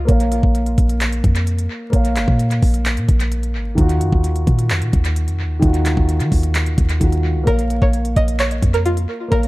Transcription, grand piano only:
0.05 A#3 A#4
0.09 C#5 F5
1.90 A#3 A#4
1.94 C#5 F5
3.75 D#3 D#4
3.79 F4 F#4
5.59 D#3 D#4
5.63 F4 F#4
7.00 D#3 D#4 F4 F#4
7.44 A#3 A#4
7.48 C#5 F5
9.28 A#3 A#4
9.32 C#5 F5

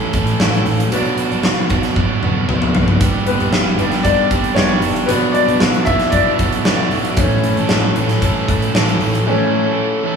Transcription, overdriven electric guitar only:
Already playing: E3 A3 C#4 A4
0.13 E3 A3 C#4 A4
0.40 E3 A3 C#4 A4
0.91 B2 F#3 B3 D4 F#4
1.30 B3 D4 F#4
1.69 F#3 B3 D4 F#4
1.95 F#3 B3 D4 F#4
2.21 F#3 B3 D4 F#4
2.47 F#3 B3 D4 F#4
3.00 G2 D3 G3 B3 D4 G4
3.39 G3 B3 D4 G4
3.78 G3 B3 D4 G4
4.05 G3 B3 D4 G4
4.31 G3 B3 D4 G4
4.56 G3 B3 D4 G4
5.09 B2 F#3 B3 D4 F#4
5.48 B3 D4 F#4
5.87 F#3 B3 D4 F#4
6.13 F#3 B3 D4 F#4
6.39 F#3 B3 D4 F#4
6.65 F#3 B3 D4 F#4
7.18 A2 E3 A3 C#4 A4
7.56 A3 C#4 A4
7.95 E3 A3 C#4 A4
8.22 E3 A3 C#4 A4
8.47 E3 A3 C#4 A4
8.73 E3 A3 C#4 A4
9.25 A2 E3 A3 C#4 A4
9.64 A3 C#4 A4
10.03 E3 A3 C#4 A4

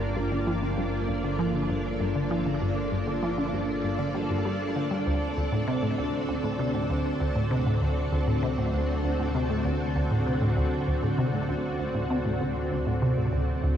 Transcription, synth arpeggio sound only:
0.17 G2
0.32 D3
0.47 F3
0.62 D3
0.78 G2
1.08 G2
1.24 D3
1.39 F3
1.54 D3
1.70 G2
2.00 G2
2.15 D3
2.31 F3
2.46 D3
2.62 G2
2.92 G2
3.07 D3
3.23 F3
3.38 D3
3.53 G2
3.84 G2
3.99 D3
4.15 G3
4.30 G2
4.45 G3
4.76 D3
4.91 G3
5.07 D2
5.37 D2
5.52 A2
5.68 C3
5.83 A2
5.98 D2
6.29 D2
6.44 A2
6.59 C3
6.75 A2
6.90 D2
7.20 D2
7.36 A2
7.51 C3
7.66 A2
7.82 D2
8.12 D2
8.28 A2
8.43 C3
8.58 A2
8.73 D2
9.04 D2
9.19 A2
9.35 C3
9.50 A2
9.65 D2
9.96 D2
10.11 A2
10.26 C3
10.42 A2
10.57 D2
10.88 D2
11.03 A2
11.18 C3
11.34 A2
11.49 D2
11.80 D2
11.95 A2
12.10 C3
12.25 A2
12.41 D2
12.71 D2
12.87 A2
13.02 C3
13.17 A2
13.33 D2
13.63 D2

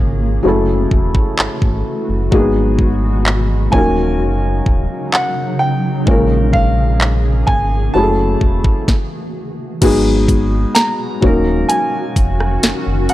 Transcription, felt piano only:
Already playing: G#3 A#3 C#4 F4 A#4
0.43 F#3 A3 C#4 E4
0.48 A4
2.31 F#3 G#3 A#3 D#4 G#4
2.39 B3
3.71 F3 A#3 C#4
3.75 F#3 D#4 A#4
6.05 G#3 A#3 C#4
6.09 F4 A#4
7.94 F#3 A3 C#4 E4 G#4
8.03 A4
9.81 F#3 G#3 B3 D#4 G#4
11.21 F#3 A#3 C#4
11.25 D#4 A#4

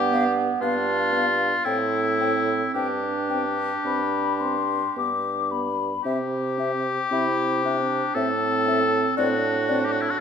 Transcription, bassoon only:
Already playing: G2
0.61 G2
1.66 A2
2.74 G2
3.85 G2
4.97 G2
6.05 C3
7.12 C3
8.16 A2
9.18 A2

